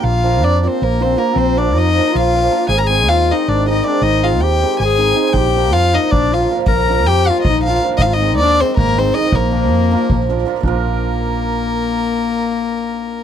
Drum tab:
SD |--------------|--------------|--------------|--------------|
BD |--------------|--------------|--------------|--------------|

SD |-oooo-oo-ooooo|-oooo-oo-ooooo|-oooo-oo-ooooo|-ooooooo-ooooo|
BD |o-------o-----|o-------o-----|o-------o-----|o-------o-----|

SD |--------------|--------------|
BD |o-------------|--------------|